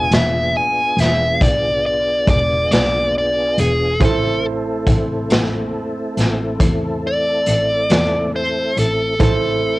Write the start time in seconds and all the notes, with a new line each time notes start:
Already playing: B3 D4 F4 G#4 E5 G#5
0.12 E1 E5, snare, closed hi-hat
0.57 G#5
0.97 E1 E5, snare, closed hi-hat
1.41 B1 D5, kick, closed hi-hat
1.86 D5
2.27 E1 D5, kick, closed hi-hat
2.71 B1 D5, snare, closed hi-hat
3.18 D5
3.58 E1 G#4, closed hi-hat
3.99 A1 A3 C4 E4 A4 C5, kick, closed hi-hat
4.04 A4
4.87 A1, kick, closed hi-hat
5.30 A1, snare, closed hi-hat
6.17 A1, snare, closed hi-hat
6.60 E2, kick, closed hi-hat
7.07 D5
7.46 A1, closed hi-hat
7.90 E2, snare, closed hi-hat
8.36 C5
8.77 A1 A4, closed hi-hat
9.18 A1 A3 C4 E4 A4 C5, kick, closed hi-hat
9.23 A4